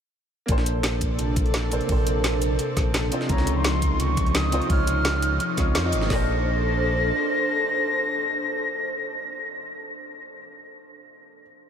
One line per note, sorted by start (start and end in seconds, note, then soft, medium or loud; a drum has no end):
0.46 1.18 A#1 loud
0.46 6.06 C3 medium
0.46 1.68 A#3 medium
0.46 1.69 D4 medium
0.46 3.09 D4 medium
0.46 3.09 A4 medium
0.46 kick loud
0.46 closed hi-hat medium
0.50 1.70 A4 medium
0.50 1.71 C5 loud
0.58 snare medium
0.66 closed hi-hat medium
0.66 closed hi-hat loud
0.66 shaker medium
0.83 snare loud
0.83 closed hi-hat medium
1.01 kick medium
1.01 closed hi-hat medium
1.01 closed hi-hat loud
1.01 shaker medium
1.19 1.70 A#1 loud
1.19 closed hi-hat medium
1.36 kick loud
1.36 closed hi-hat medium
1.36 shaker medium
1.46 closed hi-hat soft
1.54 snare loud
1.54 closed hi-hat medium
1.70 1.80 A#1 medium
1.70 1.85 A#3 medium
1.70 1.87 D4 medium
1.70 1.87 A4 medium
1.70 1.88 C5 medium
1.70 closed hi-hat medium
1.70 closed hi-hat loud
1.70 shaker medium
1.81 closed hi-hat soft
1.86 2.58 A#1 loud
1.86 3.08 A#3 medium
1.86 3.09 D4 medium
1.86 3.10 A4 medium
1.86 kick loud
1.86 closed hi-hat medium
1.86 open hi-hat medium
1.92 3.11 C5 loud
2.07 closed hi-hat medium
2.07 closed hi-hat loud
2.07 shaker medium
2.24 snare loud
2.24 closed hi-hat medium
2.42 closed hi-hat medium
2.42 closed hi-hat loud
2.42 shaker medium
2.59 closed hi-hat medium
2.77 3.11 A#1 medium
2.77 kick loud
2.77 snare soft
2.77 closed hi-hat medium
2.77 shaker medium
2.94 snare loud
2.94 closed hi-hat medium
3.10 6.07 F3 medium
3.10 3.27 C4 medium
3.10 3.27 D#4 medium
3.10 6.07 D#4 medium
3.10 3.28 F4 medium
3.10 3.28 C5 medium
3.10 closed hi-hat medium
3.10 shaker medium
3.21 snare soft
3.26 3.98 C#2 loud
3.26 4.49 C3 medium
3.26 4.50 D#4 medium
3.26 4.51 F4 medium
3.26 3.58 A#5 medium
3.26 kick loud
3.26 closed hi-hat medium
3.32 4.52 C#5 loud
3.38 snare medium
3.47 closed hi-hat medium
3.47 closed hi-hat loud
3.47 shaker medium
3.56 4.02 C6 loud
3.64 snare loud
3.64 closed hi-hat medium
3.82 kick medium
3.82 closed hi-hat medium
3.82 closed hi-hat loud
3.82 shaker medium
4.00 4.51 C#2 loud
4.00 4.37 C#6 loud
4.00 closed hi-hat medium
4.17 kick loud
4.17 closed hi-hat medium
4.17 closed hi-hat loud
4.17 shaker medium
4.27 closed hi-hat soft
4.35 4.70 D#6 loud
4.35 snare loud
4.35 closed hi-hat medium
4.51 4.61 C#2 medium
4.51 4.67 C4 medium
4.51 4.67 D#4 medium
4.51 4.68 F4 medium
4.51 4.69 C5 medium
4.51 closed hi-hat medium
4.51 shaker medium
4.62 closed hi-hat soft
4.67 5.39 C#2 loud
4.67 5.54 C3 medium
4.67 5.55 D#4 medium
4.67 5.71 F6 loud
4.67 kick loud
4.67 closed hi-hat medium
4.67 open hi-hat medium
4.71 5.56 F4 medium
4.71 5.57 C#5 loud
4.87 closed hi-hat medium
4.87 closed hi-hat loud
4.87 shaker medium
5.05 snare loud
5.05 closed hi-hat medium
5.22 closed hi-hat medium
5.22 shaker medium
5.40 closed hi-hat medium
5.56 5.77 C#2 medium
5.56 5.72 C4 medium
5.56 5.73 D#4 medium
5.56 5.73 F4 medium
5.56 5.74 C#5 medium
5.56 kick loud
5.56 snare soft
5.56 closed hi-hat medium
5.56 shaker medium
5.75 5.94 F2 loud
5.75 snare loud
5.75 closed hi-hat medium
5.83 6.08 C4 medium
5.83 6.08 D#4 medium
5.83 6.08 F4 medium
5.83 6.09 D#5 medium
5.92 6.09 G#1 medium
5.92 closed hi-hat medium
5.92 shaker medium
6.02 snare soft
6.06 10.35 A#3 medium
6.06 10.36 D4 medium
6.10 7.12 A#1 loud
6.10 9.67 D4 medium
6.10 9.67 A4 medium
6.10 10.38 A4 medium
6.10 9.67 C5 medium
6.10 9.67 A#6 loud
6.10 kick loud
6.10 snare loud
6.10 open hi-hat medium
6.15 10.39 C5 medium